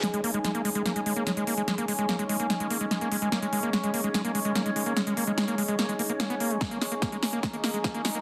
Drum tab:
HH |xxoxxxoxxxoxxxox|xxoxxxoxxxoxxxox|xxoxxxoxxxoxxxox|xxoxxxoxxxoxxxox|
SD |o---o---o---o---|o---o---o---o---|o---o---o---o---|o---o---o---o---|
BD |----------------|----------------|----------------|----------------|

HH |xxoxxxoxxxoxxxox|
SD |o-o-o-o-o-o-o-o-|
BD |o---o---o---o---|